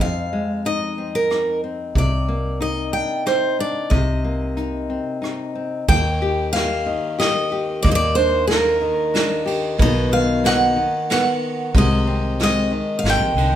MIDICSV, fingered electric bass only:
0, 0, Header, 1, 2, 480
1, 0, Start_track
1, 0, Key_signature, -3, "major"
1, 0, Tempo, 652884
1, 1435, Time_signature, 3, 2, 24, 8
1, 9966, End_track
2, 0, Start_track
2, 0, Title_t, "Fingered electric bass"
2, 0, Program_c, 0, 33
2, 0, Note_on_c, 0, 41, 72
2, 773, Note_off_c, 0, 41, 0
2, 1434, Note_on_c, 0, 36, 86
2, 2213, Note_off_c, 0, 36, 0
2, 2876, Note_on_c, 0, 36, 85
2, 3659, Note_off_c, 0, 36, 0
2, 4327, Note_on_c, 0, 39, 93
2, 5106, Note_off_c, 0, 39, 0
2, 5767, Note_on_c, 0, 39, 94
2, 6543, Note_off_c, 0, 39, 0
2, 7200, Note_on_c, 0, 35, 99
2, 7976, Note_off_c, 0, 35, 0
2, 8635, Note_on_c, 0, 36, 96
2, 9412, Note_off_c, 0, 36, 0
2, 9585, Note_on_c, 0, 32, 74
2, 9690, Note_off_c, 0, 32, 0
2, 9694, Note_on_c, 0, 34, 85
2, 9810, Note_off_c, 0, 34, 0
2, 9817, Note_on_c, 0, 36, 73
2, 9932, Note_off_c, 0, 36, 0
2, 9940, Note_on_c, 0, 38, 72
2, 9966, Note_off_c, 0, 38, 0
2, 9966, End_track
0, 0, End_of_file